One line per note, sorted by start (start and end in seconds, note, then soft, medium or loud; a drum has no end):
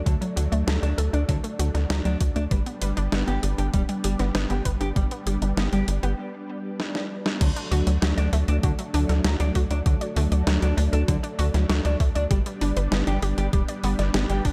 0.00 2.47 F#3 medium
0.00 2.47 A3 medium
0.00 7.37 D4 medium
0.06 0.18 D2 loud
0.06 0.14 D3 medium
0.06 0.17 F#3 medium
0.06 kick loud
0.06 closed hi-hat medium
0.21 0.32 F#3 loud
0.21 closed hi-hat soft
0.36 0.48 D2 medium
0.36 0.45 D3 medium
0.36 0.47 F#4 medium
0.36 closed hi-hat medium
0.52 0.64 D2 medium
0.52 0.62 A3 loud
0.52 closed hi-hat soft
0.67 0.79 D2 loud
0.67 0.75 F#3 loud
0.67 0.78 A4 medium
0.67 snare loud
0.67 closed hi-hat medium
0.83 0.94 D2 medium
0.83 0.93 A3 medium
0.83 0.94 D4 medium
0.83 closed hi-hat soft
0.98 1.09 D2 medium
0.98 1.08 A4 medium
0.98 closed hi-hat medium
1.13 1.25 D2 medium
1.13 1.24 D4 loud
1.13 1.21 D4 medium
1.13 closed hi-hat soft
1.29 1.40 C2 loud
1.29 1.36 D3 medium
1.29 1.39 F#3 loud
1.29 kick loud
1.29 closed hi-hat medium
1.44 1.54 A3 medium
1.44 closed hi-hat soft
1.59 1.71 D2 medium
1.59 1.67 D3 medium
1.59 1.70 F#4 medium
1.59 closed hi-hat medium
1.74 1.86 D2 medium
1.74 1.81 D4 medium
1.74 snare soft
1.74 closed hi-hat soft
1.90 2.01 D2 loud
1.90 2.00 F#3 medium
1.90 1.98 F#3 loud
1.90 snare loud
1.90 closed hi-hat medium
2.05 2.17 D2 medium
2.05 2.16 F#3 loud
2.05 2.17 D4 medium
2.05 closed hi-hat soft
2.21 2.32 D2 medium
2.21 2.31 F#4 medium
2.21 kick loud
2.21 closed hi-hat medium
2.36 2.47 D2 medium
2.36 2.46 A3 loud
2.36 2.44 D4 loud
2.36 closed hi-hat soft
2.51 2.63 G1 loud
2.51 2.59 G3 medium
2.51 7.37 G3 medium
2.51 7.37 B3 medium
2.51 2.62 B4 medium
2.51 kick loud
2.51 closed hi-hat medium
2.66 2.77 B3 medium
2.66 closed hi-hat soft
2.82 2.93 G1 medium
2.82 2.89 G3 medium
2.82 2.92 B4 loud
2.82 closed hi-hat medium
2.97 3.09 G1 medium
2.97 3.07 D4 loud
2.97 closed hi-hat soft
3.12 3.24 G1 loud
3.12 3.23 G3 medium
3.12 3.20 B3 loud
3.12 snare loud
3.12 closed hi-hat medium
3.27 3.39 G1 medium
3.27 3.38 B3 medium
3.27 3.39 G4 medium
3.27 closed hi-hat soft
3.43 3.55 G1 loud
3.43 3.53 G4 medium
3.43 closed hi-hat medium
3.58 3.70 G1 medium
3.58 3.65 D4 medium
3.58 3.66 G4 medium
3.58 closed hi-hat soft
3.74 3.85 D1 loud
3.74 3.84 G3 medium
3.74 3.81 G3 medium
3.74 kick loud
3.74 closed hi-hat medium
3.89 3.99 G3 loud
3.89 closed hi-hat soft
4.04 4.16 G1 medium
4.04 4.12 G3 medium
4.04 4.15 G4 medium
4.04 closed hi-hat medium
4.19 4.31 G1 medium
4.19 4.30 B3 loud
4.19 snare soft
4.19 closed hi-hat soft
4.35 4.46 G1 loud
4.35 4.43 B3 loud
4.35 4.45 B4 medium
4.35 snare loud
4.35 closed hi-hat medium
4.50 4.62 G1 medium
4.50 4.61 B3 medium
4.50 4.62 G4 medium
4.50 closed hi-hat soft
4.65 4.77 G1 medium
4.65 4.76 B4 loud
4.65 kick medium
4.65 closed hi-hat medium
4.81 4.92 G1 medium
4.81 4.91 D4 medium
4.81 4.88 G4 loud
4.81 closed hi-hat soft
4.96 5.08 G1 loud
4.96 5.06 G3 loud
4.96 5.04 G3 medium
4.96 kick loud
4.96 closed hi-hat medium
5.11 5.22 B3 medium
5.11 closed hi-hat soft
5.26 5.38 G1 medium
5.26 5.34 G3 medium
5.26 5.37 G4 medium
5.26 closed hi-hat medium
5.42 5.53 G1 medium
5.42 5.48 D4 medium
5.42 closed hi-hat soft
5.57 5.69 G1 loud
5.57 5.68 G3 medium
5.57 5.65 B3 loud
5.57 snare loud
5.57 closed hi-hat medium
5.72 5.84 G1 medium
5.72 5.83 G3 loud
5.72 5.84 G4 loud
5.72 closed hi-hat soft
5.88 5.99 G1 medium
5.88 5.98 G4 medium
5.88 closed hi-hat medium
6.03 6.15 G1 medium
6.03 6.14 B3 loud
6.03 6.11 G4 medium
6.03 closed hi-hat soft
6.80 snare medium
6.95 snare medium
7.26 snare medium
7.41 7.52 D2 loud
7.41 7.49 D3 medium
7.41 7.56 F#3 medium
7.41 12.27 F#3 medium
7.41 12.27 A3 medium
7.41 14.53 D4 medium
7.41 kick loud
7.41 closed hi-hat medium
7.41 crash loud
7.56 7.63 D4 loud
7.56 closed hi-hat soft
7.71 7.83 D2 loud
7.71 7.79 D3 medium
7.71 7.86 F#4 loud
7.71 open hi-hat medium
7.87 7.98 D2 medium
7.87 7.97 F#3 medium
7.87 closed hi-hat soft
8.02 8.14 D2 loud
8.02 8.10 F#3 loud
8.02 8.12 F#4 medium
8.02 snare loud
8.02 closed hi-hat medium
8.18 8.29 D2 medium
8.18 8.29 D4 medium
8.18 8.24 D5 medium
8.18 closed hi-hat soft
8.33 8.44 D2 medium
8.33 8.47 A3 loud
8.33 open hi-hat medium
8.48 8.59 D2 medium
8.48 8.56 D4 loud
8.48 8.59 D5 medium
8.48 closed hi-hat soft
8.63 8.75 C2 loud
8.63 8.71 D3 medium
8.63 8.78 F#4 medium
8.63 kick loud
8.63 closed hi-hat medium
8.79 8.93 F#3 medium
8.79 closed hi-hat soft
8.94 9.05 D2 medium
8.94 9.02 D3 medium
8.94 9.09 D4 loud
8.94 open hi-hat medium
9.09 9.21 D2 medium
9.09 9.24 A4 medium
9.09 snare soft
9.09 closed hi-hat soft
9.24 9.36 D2 loud
9.24 9.39 F#3 medium
9.24 9.33 F#3 loud
9.24 snare loud
9.24 closed hi-hat medium
9.40 9.51 D2 medium
9.40 9.46 D4 loud
9.40 9.52 D4 loud
9.40 closed hi-hat soft
9.55 9.67 D2 loud
9.55 9.70 F#4 loud
9.55 kick medium
9.55 open hi-hat medium
9.70 9.82 D2 medium
9.70 9.81 F#3 medium
9.70 9.78 D4 loud
9.70 closed hi-hat soft
9.86 9.97 D2 loud
9.86 9.94 D3 medium
9.86 9.96 F#4 medium
9.86 kick loud
9.86 closed hi-hat medium
10.01 10.07 D5 medium
10.01 closed hi-hat soft
10.16 10.28 D2 loud
10.16 10.24 D3 medium
10.16 10.31 A3 loud
10.16 open hi-hat medium
10.32 10.43 D2 medium
10.32 10.42 D5 medium
10.32 closed hi-hat soft
10.47 10.58 D2 loud
10.47 10.55 F#3 loud
10.47 10.62 F#4 medium
10.47 snare loud
10.47 closed hi-hat medium
10.62 10.74 D2 medium
10.62 10.77 F#3 medium
10.62 10.74 D4 loud
10.62 closed hi-hat soft
10.77 10.89 D2 loud
10.77 10.92 D4 loud
10.77 open hi-hat medium
10.93 11.04 D2 medium
10.93 11.01 D4 loud
10.93 11.07 A4 medium
10.93 closed hi-hat soft
11.08 11.20 C2 loud
11.08 11.16 D3 medium
11.08 11.23 F#3 medium
11.08 kick loud
11.08 closed hi-hat medium
11.23 11.30 D4 loud
11.23 closed hi-hat soft
11.39 11.50 D2 loud
11.39 11.47 D3 medium
11.39 11.53 F#4 loud
11.39 open hi-hat medium
11.54 11.66 D2 medium
11.54 11.65 F#3 medium
11.54 snare soft
11.54 closed hi-hat soft
11.69 11.81 D2 loud
11.69 11.77 F#3 loud
11.69 11.80 F#4 medium
11.69 snare loud
11.69 closed hi-hat medium
11.85 11.96 D2 medium
11.85 11.96 D4 loud
11.85 11.91 D5 medium
11.85 closed hi-hat soft
12.00 12.12 D2 medium
12.00 12.15 A3 medium
12.00 kick loud
12.00 open hi-hat medium
12.15 12.27 D2 medium
12.15 12.23 D4 loud
12.15 12.26 D5 medium
12.15 closed hi-hat soft
12.31 12.42 G1 loud
12.31 14.53 G3 medium
12.31 12.38 G3 medium
12.31 14.53 B3 medium
12.31 12.45 G4 medium
12.31 kick loud
12.31 closed hi-hat medium
12.46 12.61 G3 medium
12.46 closed hi-hat soft
12.61 12.73 G1 medium
12.61 12.69 G3 medium
12.61 12.76 D4 loud
12.61 open hi-hat medium
12.77 12.88 G1 medium
12.77 12.91 B4 medium
12.77 closed hi-hat soft
12.92 13.03 G1 loud
12.92 13.06 G3 medium
12.92 13.00 B3 loud
12.92 snare loud
12.92 closed hi-hat medium
13.07 13.19 G1 medium
13.07 13.13 D4 loud
13.07 13.19 G4 loud
13.07 closed hi-hat soft
13.22 13.34 G1 loud
13.22 13.37 G4 loud
13.22 open hi-hat medium
13.38 13.49 G1 medium
13.38 13.48 G3 medium
13.38 13.46 G4 loud
13.38 closed hi-hat soft
13.53 13.65 D1 loud
13.53 13.61 G3 medium
13.53 13.64 G4 medium
13.53 kick loud
13.53 closed hi-hat medium
13.68 13.75 D5 medium
13.68 closed hi-hat soft
13.83 13.95 G1 loud
13.83 13.92 G3 medium
13.83 13.98 B3 loud
13.83 open hi-hat medium
13.99 14.10 G1 medium
13.99 14.09 D5 medium
13.99 snare soft
13.99 closed hi-hat soft
14.14 14.26 G1 loud
14.14 14.22 B3 loud
14.14 14.29 G4 medium
14.14 snare loud
14.14 closed hi-hat medium
14.29 14.41 G1 medium
14.29 14.44 G3 medium
14.29 14.41 G4 loud
14.29 closed hi-hat soft
14.45 14.53 G1 medium
14.45 14.53 D4 loud
14.45 kick medium
14.45 open hi-hat medium